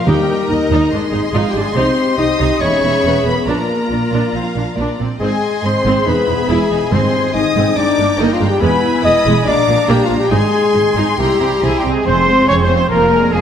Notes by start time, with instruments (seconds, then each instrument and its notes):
Already playing: viola section A#4
0.06 double bass section D#2, cello section D#2, timpani D#3, french horn section G3, viola section D#4, clarinet G4, violin section D#5 G5 A#5
0.48 double bass section D#2, cello section D#2, french horn section D#3, clarinet D#4, viola section D#4, violin section D#5
0.70 double bass section D#2, cello section D#2, viola section D#4
0.91 double bass section G#1, cello section G#2, viola section D4 G#4, violin section C6
1.12 double bass section G#1, cello section G#2, viola section D#4
1.33 double bass section G#1, cello section G#2, french horn section F3, viola section D#4, clarinet F4, violin section F5
1.48 french horn section G3, clarinet G4, violin section G5
1.54 double bass section G#1, cello section G#2, viola section D4
1.62 french horn section G#3, clarinet G#4, violin section G#5
1.75 double bass section C2, cello section C3, french horn section C4, viola section D#4 G4, clarinet C5, violin section C6
2.18 double bass section C2, cello section C3, french horn section D#4, viola section D#4, clarinet D#5, violin section D#6
2.39 double bass section C2, cello section C3, viola section D#4
2.60 double bass section E1, cello section E2, viola section A#3 G#4, french horn section C#4, clarinet C#5, violin section E5 B5 C#6
2.82 double bass section E1, cello section E2, viola section B3
3.02 double bass section E1, cello section E2
3.06 viola section B3
3.24 double bass section E1, cello section E2, viola section A#3, french horn section B3, clarinet B4, violin section B5
3.46 double bass section A#1, cello section A#2, french horn section A#3, viola section D4 F4, clarinet A#4, violin section D5 A#5
3.90 double bass section A#1, cello section A#2, viola section D4, violin section D5
4.12 double bass section A#1, cello section A#2, viola section D4
4.33 double bass section A#1, cello section A#2, viola section C4, violin section F5
4.56 double bass section A#1, cello section A#2, viola section D4
4.77 double bass section A#1, cello section A#2, viola section D4, violin section D5
4.99 double bass section A#1, cello section A#2, viola section C4
5.19 double bass section G#1, cello section G#2, french horn section G#3, viola section C4 G#4, clarinet G#4, violin section D#5 G#5 C6
5.63 double bass section G#1, cello section G#2, french horn section C4, viola section C4, clarinet C5, violin section C6
5.84 double bass section G#1, cello section G#2, viola section C4
6.05 double bass section E1, cello section E2, french horn section B3, viola section D#4, clarinet B4, violin section E5 B5
6.27 double bass section E1, cello section E2, viola section E4
6.48 double bass section E1, cello section E2, french horn section G#3, viola section E4, clarinet G#4, violin section G#5
6.70 double bass section E1, cello section E2, viola section D#4
6.91 double bass section G#1, cello section G#2, timpani G#2, french horn section C4, viola section C4, clarinet C5, violin section D#5 G#5 C6
7.34 double bass section G#1, cello section G#2, viola section C4, french horn section D#4, clarinet D#5, violin section D#6
7.55 double bass section G#1, cello section G#2, viola section C4
7.76 double bass section G1, cello section G2, viola section G#3 D4, french horn section D4, clarinet D5, violin section G5 A#5 D6
7.97 double bass section G1, cello section G2, viola section A#3
8.17 double bass section G1, cello section G2, french horn section D#3, viola section A#3, clarinet D#4, violin section D#5
8.32 french horn section F3, clarinet F4, violin section F5
8.40 double bass section G1, cello section G2, viola section G#3
8.46 french horn section G3, clarinet G4, violin section G5
8.60 double bass section E1, cello section E2, viola section G#3 E4, french horn section B3, clarinet B4, violin section G#5 B5
9.04 double bass section E1, cello section E2, viola section G#3, french horn section D#5, clarinet D#5, violin section D#6
9.25 double bass section E1, cello section E2, viola section G#3
9.46 double bass section A#1, cello section A#2, viola section G#3 D4, french horn section D4, clarinet D5, violin section F5 A#5 D6
9.67 double bass section A#1, cello section A#2, viola section A#3
9.88 double bass section A#1, cello section A#2, french horn section G3, viola section A#3, clarinet G4, violin section G5
10.04 french horn section F3, clarinet F4, violin section F5
10.10 double bass section A#1, cello section A#2, viola section G#3
10.17 french horn section G3, clarinet G4, violin section G5
10.30 double bass section G#1, cello section G#2, french horn section G#3, viola section D#4, clarinet G#4, violin section G#5 C6
10.74 double bass section G#1, cello section G#2, viola section D#4
10.95 double bass section G#1, cello section G#2, french horn section G#3, viola section D#4, clarinet G#4, violin section G#5
11.17 double bass section C2, cello section C3, french horn section G3, viola section A#3 E4, clarinet G4, violin section G5 A#5
11.39 double bass section C2, cello section C3, french horn section G3, viola section C4, violin section G4, trumpet section G4, flute G5
11.61 double bass section C2, cello section C3, french horn section G#3, viola section E4, violin section G#4, trumpet section G#4, flute G#5
11.77 french horn section G3, violin section G4, trumpet section G4, flute G5
11.83 double bass section C2, cello section C3, viola section C4
11.91 french horn section G#3, violin section G#4, trumpet section G#4, flute G#5
12.05 double bass section F1, cello section F2, viola section G#3 C4, french horn section C4, violin section G#4 C5, trumpet section C5, flute C6
12.26 viola section G#3 C4, violin section F4 C5
12.47 double bass section F1, cello section F2, viola section G#3 C4, french horn section C#4, violin section G#4 C#5, trumpet section C#5, flute C#6
12.61 french horn section C4, violin section C5, trumpet section C5, flute C6
12.69 viola section G#3 C4, violin section F4 C5
12.76 french horn section C4, trumpet section C5, violin section C5, flute C6
12.90 double bass section F1, cello section F2, viola section F3 A#3, french horn section A#3, violin section F4 A#4, trumpet section A#4, flute A#5
13.12 viola section G#3, violin section D4 G#4
13.32 double bass section F1, cello section F2, viola section F3 A#3, french horn section G#3, violin section F4 G#4, trumpet section G#4, flute G#5